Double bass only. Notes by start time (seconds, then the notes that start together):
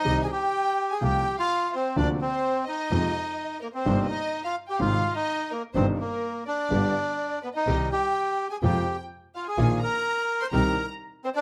0.06 C2
1.02 C2
1.97 D2
2.91 F2
3.86 G1
4.80 G#1
5.75 G1
6.70 G1
7.66 C2
8.63 F2
9.58 A#1
10.52 C2